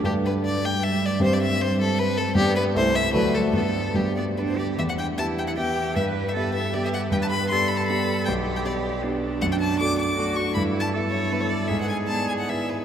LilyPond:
<<
  \new Staff \with { instrumentName = "Violin" } { \time 3/4 \key g \major \tempo 4 = 155 g'8 b'8 d''8 g''8 e''8 d''8 | c''16 d''16 e''8 c''8 a'8 b'8 a'8 | g'8 b'8 c''8 e''8 b'8 a'8 | a'4 g'8 d''8 b'16 c''16 d''8 |
\key e \minor e''16 fis''16 g''8 a''8 g''16 fis''16 g''4 | e''8. e''16 b'8 e''8 d''16 e''16 fis''8 | g''16 a''16 b''8 c'''8 b''16 a''16 b''4 | g''8. g''16 d''8 r4. |
\key e \dorian fis''16 g''16 a''8 d'''8 d'''4 cis'''8 | \tuplet 3/2 { b''4 a''8~ } a''16 r16 cis''8 b'16 cis''16 d''8 | e''16 fis''16 gis''8 a''8 gis''16 fis''16 e''8 b'8 | }
  \new Staff \with { instrumentName = "Cello" } { \time 3/4 \key g \major g2.~ | g2. | b4 a4 fis4 | b4 g8 b8 d'8 g'8 |
\key e \minor r4 e'4 g'4 | b'4 a'4 g'4 | b'4 a'2 | g'2 d'4~ |
\key e \dorian d'2 fis'4 | e'4 a'2 | gis'2. | }
  \new Staff \with { instrumentName = "Grand piano" } { \time 3/4 \key g \major <g, d' g' b'>2. | <g, c' g' c''>2. | <g, b g' d''>4 <c, a e' e''>4 <d, a fis' d''>4 | <g, b g' d''>4 <g, b g' d''>2 |
\key e \minor e,4 <b g' e''>4 <b g' e''>4 | g,4 <b g' e''>4 <b g' e''>4 | g,4 <b g' d''>4 <b g' d''>4 | b,,4 <b g' d''>4 <b g' d''>4 |
\key e \dorian fis,4 <a fis' d''>4 <a fis' d''>4 | g,4 <b e' e''>4 <b e' e''>4 | gis,4 <b e' d''>4 <b e' d''>4 | }
>>